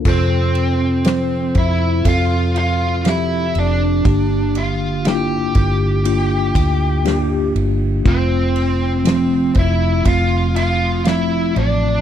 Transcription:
<<
  \new Staff \with { instrumentName = "Lead electric guitar" } { \time 4/4 \key f \major \tempo 4 = 60 <c' c''>4. <e' e''>8 <f' f''>8 <f' f''>8 <e' e''>8 <d' d''>8~ | <d' d''>8 <f' f''>8 <g' g''>2~ <g' g''>8 r8 | <c' c''>4. <e' e''>8 <f' f''>8 <f' f''>8 <e' e''>8 <d' d''>8 | }
  \new Staff \with { instrumentName = "Tine electric piano" } { \time 4/4 \key f \major <c' f' a'>4 <f c' c''>4 <c' f' a'>4 <f c' g'>4 | <bes d' g'>4 <bes d' e' f'>4 <bes d' f'>4 <bes d' g'>4 | <a c' f'>4 <f a c'>4 <a c' f'>4 <f a c'>4 | }
  \new Staff \with { instrumentName = "Tine electric piano" } { \clef bass \time 4/4 \key f \major c4. r2 r8 | <g, d>4. r2 r8 | c4. r2 r8 | }
  \new Staff \with { instrumentName = "Fingered electric bass" } { \clef bass \time 4/4 \key f \major f,4. f,8 f,4. f,,8 | g,,4. g,,4 d,4 g,,8 | f,,4. f,,8 f,,4. a,,8 | }
  \new DrumStaff \with { instrumentName = "Drums" } \drummode { \time 4/4 <cymc bd>8 cymr8 <cymr sn>8 <bd cymr>8 <bd cymr>8 cymr8 <cymr sn>8 cymr8 | <bd cymr>8 cymr8 <cymr sn>8 <bd cymr>8 cymr8 <bd cymr>8 <cymr sn>8 cymr8 | <bd cymr>8 cymr8 <cymr sn>8 <bd cymr>8 <bd cymr>8 cymr8 <cymr sn>8 cymr8 | }
>>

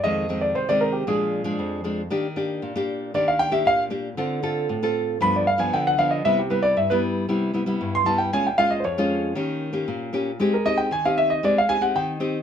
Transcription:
<<
  \new Staff \with { instrumentName = "Grand piano" } { \time 4/4 \key c \minor \tempo 4 = 116 ees''8. d''16 c''16 d''16 bes'16 g'16 aes'4. r8 | r2 d''16 f''16 g''16 e''16 f''8 r8 | r2 b''16 d''16 f''16 aes''16 g''16 fis''16 f''16 ees''16 | e''16 g'16 b'16 d''16 e''16 b'16 r4. r16 c'''16 a''16 g''16 |
aes''16 g''16 f''16 ees''16 <c'' des''>4 r2 | r16 bes'16 ees''16 g''16 aes''16 f''16 e''16 ees''16 d''16 f''16 aes''16 fis''16 g''8 r8 | }
  \new Staff \with { instrumentName = "Nylon-string guitar" } { \time 4/4 \key c \minor << { <ees aes c'>8 <ees aes c'>8. <ees aes c'>8. <f aes d'>8. <f aes d'>8. <f aes d'>16 r16 | <bes d' g'>16 r16 <bes d' g'>8. <bes d' g'>8. <bes d' g'>8. <bes d' g'>8. <bes d' g'>16 r16 | <c' f' a'>8 <c' f' a'>8. <c' f' a'>8. <f b d'>8 r16 <f b d'>8. <f b d'>8 | <g b e'>16 r16 <g b e'>8 r16 <g b e'>8. <g b e'>8 <g b e'>16 <g b e'>8. <g b e'>8 |
<aes des' f'>16 r16 <aes des' f'>8 r16 <aes des' f'>8. <bes des' g'>8. <bes des' g'>8. <bes des' g'>16 r16 | <c' ees' g'>16 r16 <c' ees' g'>8 r16 <c' ees' g'>8. <c' ees' g'>16 r16 <c' ees' g'>16 <c' ees' g'>8. <c' ees' g'>16 r16 | } \\ { f,4 c4 bes,4 f,4 | ees4 bes,4 ees4 bes,4 | d4 a,4 g,4 d4 | c4 g,4 c4 g,4 |
bes,4 f,4 ees4 bes,4 | aes4 ees4 aes4 ees4 | } >> }
>>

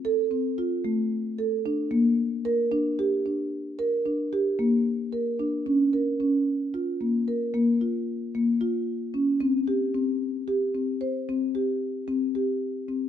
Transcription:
\new Staff \with { instrumentName = "Marimba" } { \time 7/8 \key bes \lydian \tempo 4 = 112 a'8 c'8 f'8 a4 a'8 d'8 | bes4 bes'8 d'8 g'8 d'4 | bes'8 d'8 g'8 bes4 bes'8 d'8 | des'8 bes'8 des'4 f'8 bes8 bes'8 |
bes8 f'4 bes8 f'4 des'8 | c'8 g'8 c'4 g'8 c'8 c''8 | c'8 g'4 c'8 g'4 c'8 | }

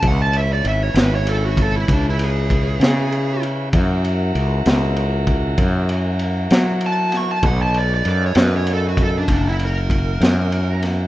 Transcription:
<<
  \new Staff \with { instrumentName = "Lead electric guitar" } { \time 12/8 \key fis \mixolydian \tempo 4. = 65 fis''16 a''16 e''16 d''16 e''16 cis''16 b'16 cis''16 a'16 fis'16 a'16 e'16 d'16 e'16 gis'2 r8 | r1 r4 a''8 cis'''16 a''16 | fis''16 a''16 d''16 d''16 d''16 cis''16 b'16 cis''16 a'16 fis'16 a'16 d'16 d'16 e'16 ais'2 r8 | }
  \new Staff \with { instrumentName = "Tonewheel organ" } { \time 12/8 \key fis \mixolydian <cis' e' b'>1. | <e' fis' ais'>1. | <dis' a' b'>2. <e' fis' ais'>2. | }
  \new Staff \with { instrumentName = "Fretless electric bass" } { \clef bass \time 12/8 \key fis \mixolydian cis,4 gis,,8 gis,,4. cis,4. cis4. | fis,4 cis,8 cis,4. fis,4. fis4. | b,,4 fis,8 fis,4. fis,,4. fis,4. | }
  \new DrumStaff \with { instrumentName = "Drums" } \drummode { \time 12/8 <bd cymr>8 cymr8 cymr8 <cymr sn>8 cymr8 <bd cymr>8 <bd cymr>8 cymr8 <bd cymr>8 <cymr sn>8 cymr8 cymr8 | <bd cymr>8 cymr8 cymr8 <cymr sn>8 cymr8 <bd cymr>8 <bd cymr>8 cymr8 cymr8 <cymr sn>8 cymr8 <cymr sn>8 | <bd cymr>8 cymr8 cymr8 <cymr sn>8 cymr8 <bd cymr>8 <bd cymr>8 cymr8 <bd cymr>8 <cymr sn>8 cymr8 <cymr sn>8 | }
>>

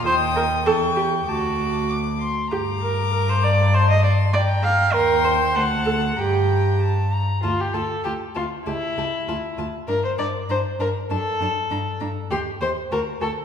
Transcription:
<<
  \new Staff \with { instrumentName = "Violin" } { \time 2/4 \key g \minor \tempo 4 = 98 ees'''4 cis'''4 | d'''4. r8 | d'''2 | c'''4 bes''4 |
c'''4 a''4 | bes''4. r8 | \key d \minor a''8 a''8 a''8 a''8 | a''8 a''8 a''8 a''8 |
bes''8 bes''8 bes''8 bes''8 | a''8 a''8 bes''8 bes''8 | \key c \dorian c'''8 c'''8 a''8 a''8 | }
  \new Staff \with { instrumentName = "Violin" } { \time 2/4 \key g \minor g''4 g''4 | a''4 d'''8 c'''8 | bes''2 | a''4 g''4 |
g''4 fis''4 | g''4 a''8 bes''8 | \key d \minor f'16 g'16 a'8 g'8 f'8 | e'4. r8 |
bes'16 c''16 d''8 c''8 bes'8 | a'4. r8 | \key c \dorian g'8 c''8 bes'8 a'8 | }
  \new Staff \with { instrumentName = "Viola" } { \time 2/4 \key g \minor c''8 bes'8 a'8 g'8 | fis'4 r4 | g'8 bes'8 bes'16 c''16 d''8 | c''16 ees''16 d''8 d''8 f''8 |
bes'8 c''8 c''8 a'8 | g'4 r4 | \key d \minor f'8 f'8 f'8 f'8 | g'8 g'8 f'8 f'8 |
d'8 d'8 d'8 d'8 | d'8 d'8 d'8 d'8 | \key c \dorian g'8 g'8 fis'8 fis'8 | }
  \new Staff \with { instrumentName = "Cello" } { \clef bass \time 2/4 \key g \minor ees,4 e,4 | d,4. r8 | g,2~ | g,2 |
ees,4 d,4 | g,4. r8 | \key d \minor d,8 d,8 d,8 d,8 | cis,8 cis,8 d,8 d,8 |
g,8 g,8 g,8 g,8 | fis,8 fis,8 g,8 g,8 | \key c \dorian ees,8 ees,8 d,8 d,8 | }
>>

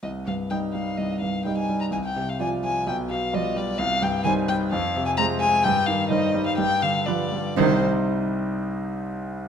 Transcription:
<<
  \new Staff \with { instrumentName = "Violin" } { \time 4/4 \key c \minor \tempo 4 = 127 ees''8 f''8 g''8 f''8 ees''8 f''8 g''16 aes''8 bes''16 | aes''16 g''8 f''16 aes''8 aes''8 g''8 f''8 ees''8 d''8 | f''8 g''8 aes''8 g''8 f''8. aes''16 bes''8 aes''8 | g''8 f''8 ees''8. f''16 g''8 f''8 d''4 |
c''8 r2. r8 | }
  \new Staff \with { instrumentName = "Grand piano" } { \clef bass \time 4/4 \key c \minor c,8 g,8 <g ees' ees''>8 g8 c,8 g,8 <g ees' ees''>8 g8 | c,8 c8 <f f' d''>8 f8 b,,8 b,8 <g f' d''>8 g8 | c,8 g,8 <g ees' c''>8 g8 f,8 c8 <aes f' c''>8 aes8 | g,8 ees8 <g ees' c''>8 g8 g,8 d8 <g f' b'>8 g8 |
<c, c g ees' c'' ees''>8 r2. r8 | }
  \new Staff \with { instrumentName = "Cello" } { \clef bass \time 4/4 \key c \minor r4 g4 r4 g4 | r4 f4 r4 f4 | r4 ees4 r4 aes4 | r4 ees4 r4 f4 |
ees8 r2. r8 | }
>>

